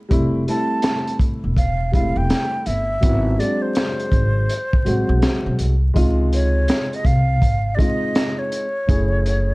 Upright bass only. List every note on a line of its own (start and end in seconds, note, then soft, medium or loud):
0.11 0.44 F1 medium
1.44 2.13 E1 medium
2.16 2.28 E1 medium
2.67 3.00 G1 medium
3.03 3.36 G#1 medium
4.12 4.45 G#1 medium
4.86 5.07 A1 medium
5.09 5.21 B1 medium
5.46 5.58 B1 medium
5.59 5.93 C2 medium
5.96 6.65 C#2 loud
7.05 7.42 C2 medium
7.42 7.75 G#1 medium
8.89 9.54 F#1 loud